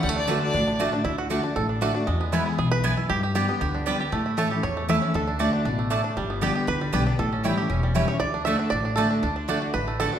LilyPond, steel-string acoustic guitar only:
\new Staff \with { instrumentName = "Steel-string acoustic guitar" } { \time 4/4 \key d \major \tempo 4 = 235 << { r4 <d a d' fis'>4 r4 <d a d' fis'>8 <d' fis'>8 | r4 <d a d' fis'>8 <d' fis'>8 r4 <d a d' fis'>8 <d' fis'>8 | r4 <e gis b e'>4 r2 | r4 <d g b g'>8 <b g'>8 r4 <d g b g'>8 <b g'>8 |
r4 <e a cis' e'>8 <cis' e'>8 r4 <e a cis' e'>8 <cis' e'>8 | r4 <d a d' fis'>4 r2 | r4 <d g b g'>4 r4 <d g b g'>8 <b g'>8 | r4 <e g cis' e'>8 <cis' e'>8 r4 <e g cis' e'>8 <cis' e'>8 |
r4 <d a d' fis'>4 r4 <d a d' fis'>4 | r4 <d a d' fis'>4 r4 <d a d' fis'>8 <d' fis'>8 | } \\ { d2 a,2 | d2 a,2 | r2 e,4 fis,4 | g,2 d2 |
a,2 r2 | d2 b,4 a,4 | g,2 d2 | a,2 e,2 |
d2 a,2 | d2 a,2 | } >> }